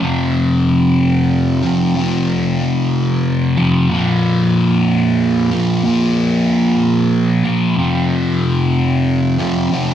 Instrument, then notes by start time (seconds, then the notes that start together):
distorted electric guitar
0.01 F2 C3 F3
1.62 F2 C3 F3
1.95 F2 C3 F3
3.57 F2 C3 F3
3.89 A#2 F3 A#3
5.51 A#2 F3 A#3
5.83 A#2 F3 A#3
7.44 A#2 F3 A#3
7.77 F2 C3 F3
9.38 F2 C3 F3
9.71 F2 C3 F3